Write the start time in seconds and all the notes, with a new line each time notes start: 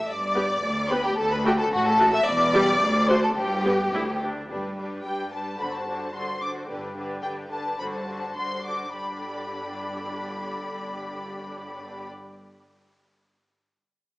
0.07 G1 G2 D5 D6
0.35 B3 G4
0.63 D2
0.89 B3 G4 B4 B5
1.04 G4 G5
1.17 D2 A4 A5
1.31 B4 B5
1.45 A3 F#4 G4 G5
1.58 A4 A5
1.72 A1 A2 F#4 F#5
1.85 A4 A5
1.99 A3 F#4
2.12 E5 E6
2.26 E1 E2 D5 D6
2.53 G3 G4
2.81 D2
3.07 A3 F#4 C5 C6
3.22 A4 A5
3.35 G1 G2 G4 G5
3.65 B3 G4
3.93 D2 E4
4.23 D4
4.49 G1 G2 G3 D4 G4 B4
4.77 G3 D4 G4 B4
5.05 G2 G3 D4 G4 B4 G5
5.33 G3 D4 G4 B4 A5
5.60 G1 G2 D3 D4 F#4 C5 B5
5.75 A5
5.88 D3 D4 F#4 C5
6.15 G2 D3 D4 F#4 C5 C6
6.42 D3 D4 F#4 C5 D6
6.69 G1 G2 D3 D4 G4 B4
6.96 D3 D4 G4 B4
7.22 G2 D3 D4 G4 B4 G5
7.50 D3 D4 G4 B4 A5
7.79 G1 G2 D3 D4 F#4 C5 B5
7.93 A5
8.07 D3 D4 F#4 C5
8.36 G2 D3 D4 F#4 C5 C6
8.65 D3 D4 F#4 C5 D6
8.95 G1 G2 D3 D4 G4 D5 B5